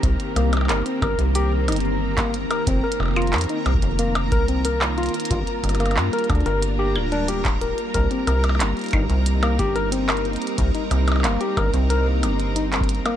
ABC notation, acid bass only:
X:1
M:4/4
L:1/16
Q:1/4=91
K:Cm
V:1 name="Acid bass" clef=bass
C,, z C,,2 G,,, z G,,, C,,3 G,,,4- G,,, z | F,,, z F,,,2 F,, z C,, F,,,3 C,,4- C,, z | G,,, z G,,,2 G,, z D,, G,,,3 D,,,4- D,,, z | C,, z C,,2 G,,, z G,,, C,,3 G,,,4- G,,, z |
C,, z C,,2 G,,, z G,,, C,,3 G,,,4- G,,, z |]